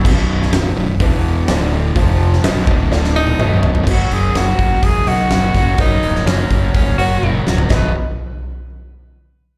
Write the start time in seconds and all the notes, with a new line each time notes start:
0.04 B0 B1 F#2 B2 B3 D#4 F#4, kick, crash
0.42 snare
0.51 B0 B1 F#2, snare, open hi-hat
0.75 B0 B1 F#2
1.00 E1 E2 B2 E3 B3 E4 B4, kick, open hi-hat
1.48 D1 D2 A2 D3 D4 A4 D5, snare, open hi-hat
1.71 D4 A4 E5
1.94 F1 F2 C3 F3 F4 C5 F5, kick, open hi-hat
2.33 snare
2.43 B0 B1 F#2 B2 F#4 B4 D#5, snare, open hi-hat
2.67 D1 D2 A2 D3, kick
2.91 D1 D2 A2 D3 D4 A4 D5, snare
3.04 snare
3.16 D#4
3.27 high tom
3.38 B0 B1 F#2 B2 F#4 B4 D#5, mid tom
3.62 F#4 B4 D#5, floor tom
3.75 floor tom
3.85 F#1 F#2 C#3 F#3 A#3 C#4 F#4 A#4 C#5, kick, crash
3.90 F#4
4.11 F#1 G#4, open hi-hat
4.34 F#1 F#2 C#3 F#3 A#3 C#4 F#4, snare, open hi-hat
4.58 F#1, kick, open hi-hat
4.83 E1 G#4, kick, open hi-hat
5.06 B1 A#3 C#4 F#4 A#4 D#5, open hi-hat
5.10 F#3
5.30 F#1 F#3 A#3 C#4 F#4, snare, open hi-hat
5.54 F#1 F#3 A#3 C#4 F#4, kick, snare, open hi-hat
5.77 F#1 F#2 C#3 F#3 A#3 C#4 D#4 F#4 A#4 C#5, kick, open hi-hat
6.03 C#1, open hi-hat
6.15 snare
6.26 F#1 F#2 C#3 F#3 A#3 C#4 F#4, snare, open hi-hat
6.50 F#1, kick, open hi-hat
6.74 C#1 C#4, kick, open hi-hat
6.98 F#1 F#3 A#3 C#4 F#4 A#4 C#5, open hi-hat
7.22 F#1 F#3 A#3 C#4 F#4, high tom
7.46 C#1 F#3 A#3 C#4 F#4, snare
7.58 floor tom
7.70 B0 B1 F#2 B2 F#3 D#4 F#4 B4 D#5, kick, snare